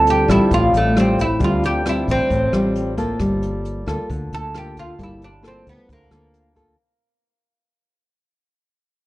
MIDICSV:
0, 0, Header, 1, 5, 480
1, 0, Start_track
1, 0, Tempo, 448430
1, 1502, Time_signature, 4, 2, 24, 8
1, 9707, End_track
2, 0, Start_track
2, 0, Title_t, "Oud"
2, 0, Program_c, 0, 24
2, 109, Note_on_c, 0, 67, 69
2, 319, Note_off_c, 0, 67, 0
2, 334, Note_on_c, 0, 64, 75
2, 551, Note_off_c, 0, 64, 0
2, 578, Note_on_c, 0, 65, 77
2, 793, Note_off_c, 0, 65, 0
2, 825, Note_on_c, 0, 57, 58
2, 1037, Note_off_c, 0, 57, 0
2, 1067, Note_on_c, 0, 60, 63
2, 1278, Note_off_c, 0, 60, 0
2, 1297, Note_on_c, 0, 64, 72
2, 1513, Note_off_c, 0, 64, 0
2, 1544, Note_on_c, 0, 65, 70
2, 1756, Note_off_c, 0, 65, 0
2, 1772, Note_on_c, 0, 67, 79
2, 1990, Note_off_c, 0, 67, 0
2, 2023, Note_on_c, 0, 64, 63
2, 2236, Note_off_c, 0, 64, 0
2, 2262, Note_on_c, 0, 60, 70
2, 2919, Note_off_c, 0, 60, 0
2, 4650, Note_on_c, 0, 69, 78
2, 4870, Note_off_c, 0, 69, 0
2, 4899, Note_on_c, 0, 67, 75
2, 5114, Note_off_c, 0, 67, 0
2, 5130, Note_on_c, 0, 65, 65
2, 5350, Note_off_c, 0, 65, 0
2, 5387, Note_on_c, 0, 64, 68
2, 5598, Note_off_c, 0, 64, 0
2, 5612, Note_on_c, 0, 62, 66
2, 5831, Note_off_c, 0, 62, 0
2, 5862, Note_on_c, 0, 60, 67
2, 6076, Note_off_c, 0, 60, 0
2, 6093, Note_on_c, 0, 59, 63
2, 6311, Note_off_c, 0, 59, 0
2, 6344, Note_on_c, 0, 58, 58
2, 7120, Note_off_c, 0, 58, 0
2, 9707, End_track
3, 0, Start_track
3, 0, Title_t, "Nylon-string guitar"
3, 0, Program_c, 1, 24
3, 0, Note_on_c, 1, 50, 50
3, 0, Note_on_c, 1, 55, 49
3, 0, Note_on_c, 1, 60, 53
3, 0, Note_on_c, 1, 65, 50
3, 273, Note_off_c, 1, 55, 0
3, 276, Note_off_c, 1, 60, 0
3, 276, Note_off_c, 1, 65, 0
3, 302, Note_on_c, 1, 55, 56
3, 309, Note_on_c, 1, 60, 51
3, 312, Note_on_c, 1, 65, 52
3, 525, Note_off_c, 1, 50, 0
3, 547, Note_on_c, 1, 45, 52
3, 984, Note_off_c, 1, 55, 0
3, 987, Note_off_c, 1, 60, 0
3, 988, Note_off_c, 1, 65, 0
3, 1029, Note_on_c, 1, 55, 50
3, 1030, Note_on_c, 1, 60, 44
3, 1034, Note_on_c, 1, 65, 53
3, 1335, Note_off_c, 1, 55, 0
3, 1335, Note_off_c, 1, 60, 0
3, 1337, Note_off_c, 1, 65, 0
3, 1480, Note_off_c, 1, 45, 0
3, 1491, Note_on_c, 1, 50, 47
3, 1498, Note_on_c, 1, 55, 48
3, 1498, Note_on_c, 1, 60, 46
3, 1503, Note_on_c, 1, 65, 54
3, 1941, Note_off_c, 1, 55, 0
3, 1942, Note_off_c, 1, 60, 0
3, 1942, Note_off_c, 1, 65, 0
3, 1985, Note_on_c, 1, 55, 50
3, 1990, Note_on_c, 1, 60, 47
3, 1992, Note_on_c, 1, 65, 52
3, 2433, Note_off_c, 1, 50, 0
3, 2461, Note_off_c, 1, 55, 0
3, 2461, Note_on_c, 1, 45, 51
3, 2463, Note_off_c, 1, 65, 0
3, 2464, Note_off_c, 1, 60, 0
3, 2708, Note_on_c, 1, 55, 56
3, 2713, Note_on_c, 1, 60, 55
3, 2722, Note_on_c, 1, 65, 54
3, 3147, Note_off_c, 1, 55, 0
3, 3149, Note_off_c, 1, 60, 0
3, 3154, Note_off_c, 1, 65, 0
3, 3184, Note_on_c, 1, 58, 56
3, 3185, Note_on_c, 1, 65, 58
3, 3191, Note_on_c, 1, 69, 62
3, 3398, Note_off_c, 1, 45, 0
3, 3423, Note_on_c, 1, 55, 48
3, 4104, Note_off_c, 1, 65, 0
3, 4105, Note_off_c, 1, 58, 0
3, 4108, Note_off_c, 1, 69, 0
3, 4137, Note_on_c, 1, 58, 52
3, 4146, Note_on_c, 1, 65, 53
3, 4154, Note_on_c, 1, 69, 53
3, 4359, Note_off_c, 1, 55, 0
3, 4389, Note_on_c, 1, 50, 51
3, 4821, Note_off_c, 1, 58, 0
3, 4826, Note_off_c, 1, 65, 0
3, 4828, Note_off_c, 1, 69, 0
3, 4862, Note_on_c, 1, 58, 45
3, 4868, Note_on_c, 1, 65, 45
3, 4872, Note_on_c, 1, 69, 46
3, 5305, Note_off_c, 1, 58, 0
3, 5306, Note_off_c, 1, 65, 0
3, 5309, Note_off_c, 1, 69, 0
3, 5322, Note_off_c, 1, 50, 0
3, 5335, Note_on_c, 1, 55, 46
3, 5336, Note_on_c, 1, 58, 47
3, 5341, Note_on_c, 1, 65, 43
3, 5342, Note_on_c, 1, 69, 52
3, 5648, Note_off_c, 1, 58, 0
3, 5650, Note_off_c, 1, 65, 0
3, 5651, Note_off_c, 1, 69, 0
3, 5807, Note_on_c, 1, 58, 44
3, 5814, Note_on_c, 1, 65, 47
3, 5821, Note_on_c, 1, 69, 46
3, 6275, Note_off_c, 1, 55, 0
3, 6296, Note_on_c, 1, 50, 47
3, 6496, Note_off_c, 1, 58, 0
3, 6500, Note_off_c, 1, 65, 0
3, 6502, Note_off_c, 1, 69, 0
3, 6536, Note_on_c, 1, 58, 54
3, 6537, Note_on_c, 1, 65, 52
3, 6541, Note_on_c, 1, 69, 54
3, 6980, Note_off_c, 1, 65, 0
3, 6981, Note_off_c, 1, 58, 0
3, 6984, Note_off_c, 1, 69, 0
3, 7015, Note_on_c, 1, 58, 45
3, 7022, Note_on_c, 1, 65, 51
3, 7024, Note_on_c, 1, 69, 52
3, 7221, Note_off_c, 1, 58, 0
3, 7222, Note_off_c, 1, 65, 0
3, 7225, Note_off_c, 1, 69, 0
3, 7235, Note_off_c, 1, 50, 0
3, 9707, End_track
4, 0, Start_track
4, 0, Title_t, "Fingered electric bass"
4, 0, Program_c, 2, 33
4, 0, Note_on_c, 2, 38, 80
4, 264, Note_off_c, 2, 38, 0
4, 303, Note_on_c, 2, 33, 85
4, 414, Note_off_c, 2, 33, 0
4, 548, Note_on_c, 2, 33, 77
4, 769, Note_off_c, 2, 33, 0
4, 783, Note_on_c, 2, 33, 73
4, 1460, Note_off_c, 2, 33, 0
4, 1504, Note_on_c, 2, 38, 83
4, 2180, Note_off_c, 2, 38, 0
4, 2227, Note_on_c, 2, 33, 81
4, 2336, Note_off_c, 2, 33, 0
4, 2471, Note_on_c, 2, 33, 78
4, 2690, Note_off_c, 2, 33, 0
4, 2698, Note_on_c, 2, 33, 72
4, 3377, Note_off_c, 2, 33, 0
4, 3423, Note_on_c, 2, 31, 81
4, 4100, Note_off_c, 2, 31, 0
4, 4146, Note_on_c, 2, 38, 75
4, 4256, Note_off_c, 2, 38, 0
4, 4388, Note_on_c, 2, 38, 77
4, 4609, Note_off_c, 2, 38, 0
4, 4631, Note_on_c, 2, 38, 68
4, 5304, Note_off_c, 2, 38, 0
4, 5341, Note_on_c, 2, 31, 79
4, 6019, Note_off_c, 2, 31, 0
4, 6067, Note_on_c, 2, 38, 77
4, 6176, Note_off_c, 2, 38, 0
4, 6307, Note_on_c, 2, 38, 75
4, 6528, Note_off_c, 2, 38, 0
4, 6542, Note_on_c, 2, 38, 71
4, 7220, Note_off_c, 2, 38, 0
4, 9707, End_track
5, 0, Start_track
5, 0, Title_t, "Drums"
5, 72, Note_on_c, 9, 42, 37
5, 179, Note_off_c, 9, 42, 0
5, 308, Note_on_c, 9, 36, 20
5, 316, Note_on_c, 9, 37, 48
5, 316, Note_on_c, 9, 42, 35
5, 415, Note_off_c, 9, 36, 0
5, 423, Note_off_c, 9, 37, 0
5, 423, Note_off_c, 9, 42, 0
5, 547, Note_on_c, 9, 36, 48
5, 549, Note_on_c, 9, 42, 49
5, 654, Note_off_c, 9, 36, 0
5, 656, Note_off_c, 9, 42, 0
5, 792, Note_on_c, 9, 42, 41
5, 899, Note_off_c, 9, 42, 0
5, 1036, Note_on_c, 9, 37, 54
5, 1036, Note_on_c, 9, 42, 39
5, 1143, Note_off_c, 9, 37, 0
5, 1143, Note_off_c, 9, 42, 0
5, 1266, Note_on_c, 9, 36, 20
5, 1273, Note_on_c, 9, 42, 36
5, 1373, Note_off_c, 9, 36, 0
5, 1380, Note_off_c, 9, 42, 0
5, 1504, Note_on_c, 9, 36, 50
5, 1504, Note_on_c, 9, 42, 52
5, 1611, Note_off_c, 9, 36, 0
5, 1611, Note_off_c, 9, 42, 0
5, 1749, Note_on_c, 9, 42, 37
5, 1856, Note_off_c, 9, 42, 0
5, 1989, Note_on_c, 9, 37, 52
5, 1989, Note_on_c, 9, 42, 39
5, 2096, Note_off_c, 9, 37, 0
5, 2096, Note_off_c, 9, 42, 0
5, 2226, Note_on_c, 9, 36, 22
5, 2231, Note_on_c, 9, 42, 35
5, 2333, Note_off_c, 9, 36, 0
5, 2338, Note_off_c, 9, 42, 0
5, 2467, Note_on_c, 9, 36, 50
5, 2473, Note_on_c, 9, 42, 48
5, 2574, Note_off_c, 9, 36, 0
5, 2580, Note_off_c, 9, 42, 0
5, 2709, Note_on_c, 9, 37, 50
5, 2709, Note_on_c, 9, 42, 37
5, 2816, Note_off_c, 9, 37, 0
5, 2816, Note_off_c, 9, 42, 0
5, 2949, Note_on_c, 9, 42, 35
5, 3056, Note_off_c, 9, 42, 0
5, 3184, Note_on_c, 9, 36, 21
5, 3187, Note_on_c, 9, 42, 36
5, 3291, Note_off_c, 9, 36, 0
5, 3294, Note_off_c, 9, 42, 0
5, 3421, Note_on_c, 9, 37, 48
5, 3421, Note_on_c, 9, 42, 48
5, 3424, Note_on_c, 9, 36, 47
5, 3528, Note_off_c, 9, 37, 0
5, 3528, Note_off_c, 9, 42, 0
5, 3531, Note_off_c, 9, 36, 0
5, 3665, Note_on_c, 9, 42, 34
5, 3772, Note_off_c, 9, 42, 0
5, 3907, Note_on_c, 9, 42, 36
5, 4014, Note_off_c, 9, 42, 0
5, 4145, Note_on_c, 9, 36, 19
5, 4151, Note_on_c, 9, 37, 50
5, 4151, Note_on_c, 9, 42, 36
5, 4252, Note_off_c, 9, 36, 0
5, 4258, Note_off_c, 9, 37, 0
5, 4258, Note_off_c, 9, 42, 0
5, 4386, Note_on_c, 9, 36, 48
5, 4390, Note_on_c, 9, 42, 46
5, 4493, Note_off_c, 9, 36, 0
5, 4497, Note_off_c, 9, 42, 0
5, 4630, Note_on_c, 9, 42, 36
5, 4737, Note_off_c, 9, 42, 0
5, 4865, Note_on_c, 9, 37, 51
5, 4865, Note_on_c, 9, 42, 37
5, 4972, Note_off_c, 9, 37, 0
5, 4972, Note_off_c, 9, 42, 0
5, 5104, Note_on_c, 9, 36, 20
5, 5105, Note_on_c, 9, 42, 36
5, 5211, Note_off_c, 9, 36, 0
5, 5213, Note_off_c, 9, 42, 0
5, 5344, Note_on_c, 9, 36, 46
5, 5344, Note_on_c, 9, 42, 49
5, 5451, Note_off_c, 9, 36, 0
5, 5451, Note_off_c, 9, 42, 0
5, 5584, Note_on_c, 9, 42, 35
5, 5692, Note_off_c, 9, 42, 0
5, 5826, Note_on_c, 9, 37, 50
5, 5826, Note_on_c, 9, 42, 36
5, 5933, Note_off_c, 9, 37, 0
5, 5933, Note_off_c, 9, 42, 0
5, 6066, Note_on_c, 9, 36, 20
5, 6068, Note_on_c, 9, 42, 36
5, 6173, Note_off_c, 9, 36, 0
5, 6175, Note_off_c, 9, 42, 0
5, 6307, Note_on_c, 9, 36, 47
5, 6312, Note_on_c, 9, 42, 49
5, 6414, Note_off_c, 9, 36, 0
5, 6419, Note_off_c, 9, 42, 0
5, 6543, Note_on_c, 9, 37, 50
5, 6543, Note_on_c, 9, 42, 36
5, 6650, Note_off_c, 9, 37, 0
5, 6650, Note_off_c, 9, 42, 0
5, 6782, Note_on_c, 9, 42, 35
5, 6889, Note_off_c, 9, 42, 0
5, 7025, Note_on_c, 9, 36, 19
5, 7027, Note_on_c, 9, 42, 36
5, 7132, Note_off_c, 9, 36, 0
5, 7134, Note_off_c, 9, 42, 0
5, 9707, End_track
0, 0, End_of_file